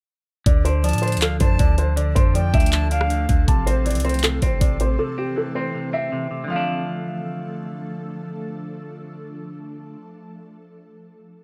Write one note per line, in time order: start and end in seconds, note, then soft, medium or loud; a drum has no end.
0.46 0.95 D2 loud
0.46 1.21 D3 medium
0.46 3.45 F3 medium
0.46 6.46 A3 medium
0.46 3.45 D4 medium
0.46 6.46 A4 medium
0.46 0.63 D5 medium
0.46 kick loud
0.46 closed hi-hat medium
0.65 1.02 D4 medium
0.65 0.81 C5 medium
0.65 closed hi-hat medium
0.83 1.78 F3 medium
0.83 1.00 D5 medium
0.83 1.19 A5 medium
0.83 closed hi-hat medium
0.89 closed hi-hat medium
0.93 1.18 A2 loud
0.93 closed hi-hat medium
0.98 1.19 C5 medium
0.98 closed hi-hat medium
1.03 1.39 D4 medium
1.03 closed hi-hat soft
1.08 closed hi-hat medium
1.12 closed hi-hat medium
1.17 1.39 D2 loud
1.17 closed hi-hat medium
1.21 1.58 D3 medium
1.21 1.39 A4 medium
1.21 1.39 F5 medium
1.21 clap loud
1.21 closed hi-hat medium
1.40 1.59 F2 loud
1.40 2.15 D4 medium
1.40 1.57 C5 medium
1.40 1.94 A5 medium
1.40 kick medium
1.40 closed hi-hat medium
1.59 2.14 D2 loud
1.59 1.77 D3 medium
1.59 1.76 D5 medium
1.59 kick loud
1.59 closed hi-hat medium
1.78 1.95 D3 medium
1.78 1.95 C5 medium
1.78 closed hi-hat medium
1.96 2.72 D3 loud
1.96 2.13 D5 medium
1.96 closed hi-hat medium
2.15 2.52 F2 loud
2.15 2.53 D4 medium
2.15 2.32 C5 medium
2.15 kick loud
2.15 closed hi-hat medium
2.34 3.29 F3 medium
2.34 2.52 D5 medium
2.34 2.70 G5 medium
2.34 closed hi-hat medium
2.54 3.26 D2 loud
2.54 2.91 D4 loud
2.54 2.90 E5 medium
2.54 kick loud
2.54 closed hi-hat soft
2.60 closed hi-hat medium
2.66 closed hi-hat medium
2.73 3.09 D3 medium
2.73 2.91 A5 medium
2.73 clap loud
2.73 closed hi-hat medium
2.91 3.48 D4 medium
2.91 3.44 F5 medium
2.91 3.45 F5 medium
2.91 closed hi-hat medium
3.01 cross-stick loud
3.10 3.28 D3 medium
3.10 closed hi-hat medium
3.29 3.47 D2 loud
3.29 3.48 D3 medium
3.29 kick medium
3.29 closed hi-hat medium
3.48 3.97 A1 loud
3.48 4.22 C3 medium
3.48 6.47 E3 medium
3.48 6.47 C4 medium
3.48 3.65 A5 medium
3.48 kick loud
3.48 closed hi-hat medium
3.67 4.03 C4 medium
3.67 3.83 C5 medium
3.67 closed hi-hat medium
3.85 4.80 E3 medium
3.85 4.03 D5 medium
3.85 closed hi-hat medium
3.91 closed hi-hat medium
3.95 4.40 C2 loud
3.95 closed hi-hat medium
4.00 closed hi-hat medium
4.05 4.41 C4 loud
4.05 4.21 C5 medium
4.05 closed hi-hat soft
4.09 closed hi-hat medium
4.14 closed hi-hat medium
4.19 closed hi-hat medium
4.23 4.60 C3 medium
4.23 4.40 A4 medium
4.23 clap loud
4.23 closed hi-hat medium
4.42 4.61 A1 loud
4.42 5.17 C4 medium
4.42 4.59 C5 medium
4.42 kick loud
4.42 closed hi-hat medium
4.61 4.98 A1 loud
4.61 4.79 C3 medium
4.61 4.77 D5 medium
4.61 kick medium
4.61 closed hi-hat medium
4.80 4.98 C3 medium
4.80 4.97 C5 medium
4.80 closed hi-hat medium
4.99 5.73 C3 medium
4.99 5.15 A4 medium
5.18 5.54 C4 medium
5.18 5.35 G4 medium
5.36 6.31 E3 medium
5.36 5.54 A4 medium
5.55 5.92 C4 loud
5.55 5.91 C5 medium
5.74 6.11 C3 medium
5.93 6.50 C4 medium
5.93 6.47 E5 medium
6.12 6.30 C3 medium
6.31 6.48 C3 medium
6.44 9.94 D3 medium
6.48 9.98 F3 medium
6.48 10.00 F3 medium
6.48 10.00 A3 medium
6.48 10.02 A3 medium
6.48 10.00 D4 medium
6.48 10.00 A4 medium
6.48 7.59 F5 medium
6.56 10.06 D4 loud